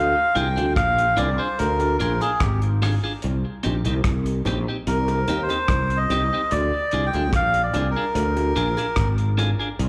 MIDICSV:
0, 0, Header, 1, 5, 480
1, 0, Start_track
1, 0, Tempo, 820793
1, 1887, Time_signature, 4, 2, 24, 8
1, 5783, End_track
2, 0, Start_track
2, 0, Title_t, "Melodica"
2, 0, Program_c, 0, 22
2, 0, Note_on_c, 0, 77, 103
2, 204, Note_on_c, 0, 79, 96
2, 212, Note_off_c, 0, 77, 0
2, 429, Note_off_c, 0, 79, 0
2, 443, Note_on_c, 0, 77, 105
2, 685, Note_on_c, 0, 74, 98
2, 693, Note_off_c, 0, 77, 0
2, 809, Note_on_c, 0, 72, 89
2, 814, Note_off_c, 0, 74, 0
2, 927, Note_on_c, 0, 70, 93
2, 930, Note_off_c, 0, 72, 0
2, 1152, Note_off_c, 0, 70, 0
2, 1161, Note_on_c, 0, 70, 88
2, 1290, Note_on_c, 0, 68, 90
2, 1292, Note_off_c, 0, 70, 0
2, 1410, Note_off_c, 0, 68, 0
2, 1411, Note_on_c, 0, 67, 71
2, 1518, Note_off_c, 0, 67, 0
2, 2849, Note_on_c, 0, 70, 87
2, 3173, Note_on_c, 0, 72, 83
2, 3177, Note_off_c, 0, 70, 0
2, 3491, Note_on_c, 0, 75, 99
2, 3499, Note_off_c, 0, 72, 0
2, 3809, Note_on_c, 0, 74, 106
2, 3818, Note_off_c, 0, 75, 0
2, 4133, Note_on_c, 0, 79, 98
2, 4136, Note_off_c, 0, 74, 0
2, 4278, Note_off_c, 0, 79, 0
2, 4301, Note_on_c, 0, 77, 112
2, 4458, Note_off_c, 0, 77, 0
2, 4463, Note_on_c, 0, 74, 98
2, 4618, Note_off_c, 0, 74, 0
2, 4627, Note_on_c, 0, 70, 92
2, 5312, Note_off_c, 0, 70, 0
2, 5783, End_track
3, 0, Start_track
3, 0, Title_t, "Clean electric guitar"
3, 0, Program_c, 1, 27
3, 206, Note_on_c, 1, 62, 70
3, 214, Note_on_c, 1, 65, 76
3, 217, Note_on_c, 1, 68, 78
3, 276, Note_off_c, 1, 62, 0
3, 280, Note_off_c, 1, 65, 0
3, 281, Note_off_c, 1, 68, 0
3, 328, Note_on_c, 1, 68, 62
3, 331, Note_on_c, 1, 65, 59
3, 336, Note_on_c, 1, 62, 58
3, 380, Note_off_c, 1, 68, 0
3, 381, Note_off_c, 1, 65, 0
3, 384, Note_off_c, 1, 62, 0
3, 682, Note_on_c, 1, 62, 76
3, 686, Note_on_c, 1, 65, 75
3, 690, Note_on_c, 1, 68, 82
3, 753, Note_off_c, 1, 62, 0
3, 756, Note_off_c, 1, 65, 0
3, 758, Note_off_c, 1, 68, 0
3, 807, Note_on_c, 1, 68, 63
3, 811, Note_on_c, 1, 65, 52
3, 815, Note_on_c, 1, 62, 50
3, 860, Note_off_c, 1, 68, 0
3, 862, Note_off_c, 1, 65, 0
3, 864, Note_off_c, 1, 62, 0
3, 1168, Note_on_c, 1, 62, 75
3, 1175, Note_on_c, 1, 65, 75
3, 1175, Note_on_c, 1, 68, 88
3, 1236, Note_off_c, 1, 62, 0
3, 1240, Note_off_c, 1, 65, 0
3, 1240, Note_off_c, 1, 68, 0
3, 1296, Note_on_c, 1, 68, 65
3, 1300, Note_on_c, 1, 65, 62
3, 1306, Note_on_c, 1, 62, 54
3, 1344, Note_off_c, 1, 68, 0
3, 1346, Note_off_c, 1, 65, 0
3, 1349, Note_off_c, 1, 62, 0
3, 1650, Note_on_c, 1, 62, 88
3, 1651, Note_on_c, 1, 65, 90
3, 1655, Note_on_c, 1, 68, 87
3, 1717, Note_off_c, 1, 62, 0
3, 1718, Note_off_c, 1, 65, 0
3, 1720, Note_off_c, 1, 68, 0
3, 1776, Note_on_c, 1, 68, 61
3, 1777, Note_on_c, 1, 65, 63
3, 1784, Note_on_c, 1, 62, 47
3, 1824, Note_off_c, 1, 65, 0
3, 1824, Note_off_c, 1, 68, 0
3, 1828, Note_off_c, 1, 62, 0
3, 2125, Note_on_c, 1, 60, 85
3, 2130, Note_on_c, 1, 63, 82
3, 2132, Note_on_c, 1, 67, 80
3, 2195, Note_off_c, 1, 60, 0
3, 2197, Note_off_c, 1, 63, 0
3, 2198, Note_off_c, 1, 67, 0
3, 2250, Note_on_c, 1, 67, 61
3, 2255, Note_on_c, 1, 63, 56
3, 2258, Note_on_c, 1, 60, 50
3, 2300, Note_off_c, 1, 67, 0
3, 2303, Note_off_c, 1, 63, 0
3, 2305, Note_off_c, 1, 60, 0
3, 2610, Note_on_c, 1, 60, 76
3, 2615, Note_on_c, 1, 63, 77
3, 2616, Note_on_c, 1, 67, 87
3, 2677, Note_off_c, 1, 60, 0
3, 2679, Note_off_c, 1, 63, 0
3, 2680, Note_off_c, 1, 67, 0
3, 2739, Note_on_c, 1, 67, 68
3, 2742, Note_on_c, 1, 63, 51
3, 2747, Note_on_c, 1, 60, 50
3, 2785, Note_off_c, 1, 67, 0
3, 2786, Note_off_c, 1, 63, 0
3, 2789, Note_off_c, 1, 60, 0
3, 3088, Note_on_c, 1, 60, 76
3, 3094, Note_on_c, 1, 63, 81
3, 3098, Note_on_c, 1, 67, 83
3, 3156, Note_off_c, 1, 60, 0
3, 3159, Note_off_c, 1, 63, 0
3, 3161, Note_off_c, 1, 67, 0
3, 3214, Note_on_c, 1, 67, 63
3, 3219, Note_on_c, 1, 63, 61
3, 3221, Note_on_c, 1, 60, 51
3, 3262, Note_off_c, 1, 67, 0
3, 3265, Note_off_c, 1, 60, 0
3, 3265, Note_off_c, 1, 63, 0
3, 3573, Note_on_c, 1, 60, 92
3, 3577, Note_on_c, 1, 63, 84
3, 3578, Note_on_c, 1, 67, 100
3, 3638, Note_off_c, 1, 60, 0
3, 3640, Note_off_c, 1, 63, 0
3, 3640, Note_off_c, 1, 67, 0
3, 3702, Note_on_c, 1, 67, 64
3, 3706, Note_on_c, 1, 63, 60
3, 3711, Note_on_c, 1, 60, 55
3, 3746, Note_off_c, 1, 67, 0
3, 3748, Note_off_c, 1, 63, 0
3, 3750, Note_off_c, 1, 60, 0
3, 4051, Note_on_c, 1, 62, 70
3, 4056, Note_on_c, 1, 65, 75
3, 4059, Note_on_c, 1, 68, 83
3, 4117, Note_off_c, 1, 62, 0
3, 4119, Note_off_c, 1, 65, 0
3, 4121, Note_off_c, 1, 68, 0
3, 4177, Note_on_c, 1, 68, 59
3, 4184, Note_on_c, 1, 65, 60
3, 4186, Note_on_c, 1, 62, 48
3, 4223, Note_off_c, 1, 68, 0
3, 4227, Note_off_c, 1, 65, 0
3, 4228, Note_off_c, 1, 62, 0
3, 4530, Note_on_c, 1, 62, 78
3, 4536, Note_on_c, 1, 65, 86
3, 4541, Note_on_c, 1, 68, 83
3, 4596, Note_off_c, 1, 62, 0
3, 4599, Note_off_c, 1, 65, 0
3, 4601, Note_off_c, 1, 68, 0
3, 4657, Note_on_c, 1, 68, 64
3, 4658, Note_on_c, 1, 65, 58
3, 4664, Note_on_c, 1, 62, 54
3, 4703, Note_off_c, 1, 65, 0
3, 4703, Note_off_c, 1, 68, 0
3, 4707, Note_off_c, 1, 62, 0
3, 5005, Note_on_c, 1, 62, 75
3, 5011, Note_on_c, 1, 65, 89
3, 5013, Note_on_c, 1, 68, 95
3, 5073, Note_off_c, 1, 62, 0
3, 5076, Note_off_c, 1, 65, 0
3, 5077, Note_off_c, 1, 68, 0
3, 5131, Note_on_c, 1, 68, 64
3, 5136, Note_on_c, 1, 65, 65
3, 5137, Note_on_c, 1, 62, 60
3, 5180, Note_off_c, 1, 68, 0
3, 5182, Note_off_c, 1, 65, 0
3, 5183, Note_off_c, 1, 62, 0
3, 5484, Note_on_c, 1, 62, 92
3, 5488, Note_on_c, 1, 65, 101
3, 5495, Note_on_c, 1, 68, 95
3, 5553, Note_off_c, 1, 62, 0
3, 5555, Note_off_c, 1, 65, 0
3, 5558, Note_off_c, 1, 68, 0
3, 5612, Note_on_c, 1, 68, 69
3, 5616, Note_on_c, 1, 65, 53
3, 5618, Note_on_c, 1, 62, 56
3, 5660, Note_off_c, 1, 68, 0
3, 5662, Note_off_c, 1, 65, 0
3, 5663, Note_off_c, 1, 62, 0
3, 5783, End_track
4, 0, Start_track
4, 0, Title_t, "Fretless electric bass"
4, 0, Program_c, 2, 35
4, 0, Note_on_c, 2, 38, 108
4, 77, Note_off_c, 2, 38, 0
4, 209, Note_on_c, 2, 36, 100
4, 319, Note_off_c, 2, 36, 0
4, 334, Note_on_c, 2, 38, 84
4, 437, Note_off_c, 2, 38, 0
4, 448, Note_on_c, 2, 34, 88
4, 663, Note_off_c, 2, 34, 0
4, 689, Note_on_c, 2, 36, 96
4, 800, Note_off_c, 2, 36, 0
4, 934, Note_on_c, 2, 38, 105
4, 1146, Note_off_c, 2, 38, 0
4, 1171, Note_on_c, 2, 34, 95
4, 1280, Note_off_c, 2, 34, 0
4, 1409, Note_on_c, 2, 32, 95
4, 1734, Note_off_c, 2, 32, 0
4, 1894, Note_on_c, 2, 36, 93
4, 2002, Note_off_c, 2, 36, 0
4, 2138, Note_on_c, 2, 34, 99
4, 2244, Note_off_c, 2, 34, 0
4, 2255, Note_on_c, 2, 36, 94
4, 2357, Note_off_c, 2, 36, 0
4, 2367, Note_on_c, 2, 36, 78
4, 2581, Note_off_c, 2, 36, 0
4, 2606, Note_on_c, 2, 34, 109
4, 2718, Note_off_c, 2, 34, 0
4, 2848, Note_on_c, 2, 36, 109
4, 3062, Note_off_c, 2, 36, 0
4, 3087, Note_on_c, 2, 39, 94
4, 3198, Note_off_c, 2, 39, 0
4, 3327, Note_on_c, 2, 36, 87
4, 3541, Note_off_c, 2, 36, 0
4, 3567, Note_on_c, 2, 36, 75
4, 3678, Note_off_c, 2, 36, 0
4, 3812, Note_on_c, 2, 38, 110
4, 3920, Note_off_c, 2, 38, 0
4, 4052, Note_on_c, 2, 36, 95
4, 4160, Note_off_c, 2, 36, 0
4, 4177, Note_on_c, 2, 38, 90
4, 4286, Note_off_c, 2, 38, 0
4, 4286, Note_on_c, 2, 34, 95
4, 4500, Note_off_c, 2, 34, 0
4, 4529, Note_on_c, 2, 36, 87
4, 4638, Note_off_c, 2, 36, 0
4, 4765, Note_on_c, 2, 38, 101
4, 4980, Note_off_c, 2, 38, 0
4, 5007, Note_on_c, 2, 34, 91
4, 5117, Note_off_c, 2, 34, 0
4, 5248, Note_on_c, 2, 32, 91
4, 5572, Note_off_c, 2, 32, 0
4, 5727, Note_on_c, 2, 36, 114
4, 5783, Note_off_c, 2, 36, 0
4, 5783, End_track
5, 0, Start_track
5, 0, Title_t, "Drums"
5, 208, Note_on_c, 9, 42, 75
5, 266, Note_off_c, 9, 42, 0
5, 336, Note_on_c, 9, 42, 53
5, 394, Note_off_c, 9, 42, 0
5, 446, Note_on_c, 9, 36, 109
5, 449, Note_on_c, 9, 37, 95
5, 449, Note_on_c, 9, 42, 81
5, 505, Note_off_c, 9, 36, 0
5, 507, Note_off_c, 9, 42, 0
5, 508, Note_off_c, 9, 37, 0
5, 575, Note_on_c, 9, 42, 63
5, 634, Note_off_c, 9, 42, 0
5, 684, Note_on_c, 9, 61, 90
5, 687, Note_on_c, 9, 42, 68
5, 743, Note_off_c, 9, 61, 0
5, 745, Note_off_c, 9, 42, 0
5, 930, Note_on_c, 9, 42, 90
5, 988, Note_off_c, 9, 42, 0
5, 1051, Note_on_c, 9, 42, 53
5, 1052, Note_on_c, 9, 60, 69
5, 1109, Note_off_c, 9, 42, 0
5, 1110, Note_off_c, 9, 60, 0
5, 1170, Note_on_c, 9, 42, 68
5, 1229, Note_off_c, 9, 42, 0
5, 1291, Note_on_c, 9, 60, 60
5, 1294, Note_on_c, 9, 42, 56
5, 1349, Note_off_c, 9, 60, 0
5, 1353, Note_off_c, 9, 42, 0
5, 1406, Note_on_c, 9, 37, 111
5, 1407, Note_on_c, 9, 36, 108
5, 1409, Note_on_c, 9, 42, 83
5, 1464, Note_off_c, 9, 37, 0
5, 1465, Note_off_c, 9, 36, 0
5, 1467, Note_off_c, 9, 42, 0
5, 1531, Note_on_c, 9, 42, 50
5, 1589, Note_off_c, 9, 42, 0
5, 1649, Note_on_c, 9, 60, 57
5, 1649, Note_on_c, 9, 61, 62
5, 1651, Note_on_c, 9, 46, 57
5, 1656, Note_on_c, 9, 37, 78
5, 1708, Note_off_c, 9, 60, 0
5, 1708, Note_off_c, 9, 61, 0
5, 1710, Note_off_c, 9, 46, 0
5, 1714, Note_off_c, 9, 37, 0
5, 1884, Note_on_c, 9, 42, 101
5, 1943, Note_off_c, 9, 42, 0
5, 2125, Note_on_c, 9, 42, 76
5, 2183, Note_off_c, 9, 42, 0
5, 2251, Note_on_c, 9, 42, 57
5, 2310, Note_off_c, 9, 42, 0
5, 2362, Note_on_c, 9, 42, 74
5, 2363, Note_on_c, 9, 37, 100
5, 2365, Note_on_c, 9, 36, 113
5, 2421, Note_off_c, 9, 37, 0
5, 2421, Note_off_c, 9, 42, 0
5, 2424, Note_off_c, 9, 36, 0
5, 2490, Note_on_c, 9, 42, 57
5, 2549, Note_off_c, 9, 42, 0
5, 2603, Note_on_c, 9, 61, 78
5, 2607, Note_on_c, 9, 42, 72
5, 2661, Note_off_c, 9, 61, 0
5, 2665, Note_off_c, 9, 42, 0
5, 2848, Note_on_c, 9, 42, 95
5, 2906, Note_off_c, 9, 42, 0
5, 2971, Note_on_c, 9, 60, 73
5, 2972, Note_on_c, 9, 42, 53
5, 3030, Note_off_c, 9, 42, 0
5, 3030, Note_off_c, 9, 60, 0
5, 3085, Note_on_c, 9, 42, 67
5, 3144, Note_off_c, 9, 42, 0
5, 3210, Note_on_c, 9, 60, 66
5, 3215, Note_on_c, 9, 42, 49
5, 3269, Note_off_c, 9, 60, 0
5, 3274, Note_off_c, 9, 42, 0
5, 3323, Note_on_c, 9, 37, 118
5, 3325, Note_on_c, 9, 36, 120
5, 3326, Note_on_c, 9, 42, 81
5, 3382, Note_off_c, 9, 37, 0
5, 3384, Note_off_c, 9, 36, 0
5, 3385, Note_off_c, 9, 42, 0
5, 3452, Note_on_c, 9, 42, 51
5, 3510, Note_off_c, 9, 42, 0
5, 3568, Note_on_c, 9, 42, 81
5, 3569, Note_on_c, 9, 60, 66
5, 3569, Note_on_c, 9, 61, 62
5, 3627, Note_off_c, 9, 42, 0
5, 3627, Note_off_c, 9, 60, 0
5, 3627, Note_off_c, 9, 61, 0
5, 3807, Note_on_c, 9, 42, 96
5, 3866, Note_off_c, 9, 42, 0
5, 4043, Note_on_c, 9, 42, 79
5, 4102, Note_off_c, 9, 42, 0
5, 4171, Note_on_c, 9, 42, 51
5, 4230, Note_off_c, 9, 42, 0
5, 4285, Note_on_c, 9, 36, 118
5, 4287, Note_on_c, 9, 37, 95
5, 4287, Note_on_c, 9, 42, 86
5, 4343, Note_off_c, 9, 36, 0
5, 4346, Note_off_c, 9, 37, 0
5, 4346, Note_off_c, 9, 42, 0
5, 4409, Note_on_c, 9, 42, 62
5, 4467, Note_off_c, 9, 42, 0
5, 4524, Note_on_c, 9, 61, 84
5, 4526, Note_on_c, 9, 42, 67
5, 4582, Note_off_c, 9, 61, 0
5, 4584, Note_off_c, 9, 42, 0
5, 4768, Note_on_c, 9, 42, 93
5, 4826, Note_off_c, 9, 42, 0
5, 4893, Note_on_c, 9, 42, 51
5, 4894, Note_on_c, 9, 60, 77
5, 4951, Note_off_c, 9, 42, 0
5, 4953, Note_off_c, 9, 60, 0
5, 5007, Note_on_c, 9, 42, 72
5, 5066, Note_off_c, 9, 42, 0
5, 5129, Note_on_c, 9, 60, 62
5, 5134, Note_on_c, 9, 42, 50
5, 5188, Note_off_c, 9, 60, 0
5, 5193, Note_off_c, 9, 42, 0
5, 5240, Note_on_c, 9, 37, 118
5, 5243, Note_on_c, 9, 42, 87
5, 5244, Note_on_c, 9, 36, 112
5, 5299, Note_off_c, 9, 37, 0
5, 5302, Note_off_c, 9, 42, 0
5, 5303, Note_off_c, 9, 36, 0
5, 5369, Note_on_c, 9, 42, 53
5, 5427, Note_off_c, 9, 42, 0
5, 5488, Note_on_c, 9, 60, 64
5, 5488, Note_on_c, 9, 61, 65
5, 5490, Note_on_c, 9, 42, 75
5, 5547, Note_off_c, 9, 60, 0
5, 5547, Note_off_c, 9, 61, 0
5, 5549, Note_off_c, 9, 42, 0
5, 5728, Note_on_c, 9, 42, 94
5, 5783, Note_off_c, 9, 42, 0
5, 5783, End_track
0, 0, End_of_file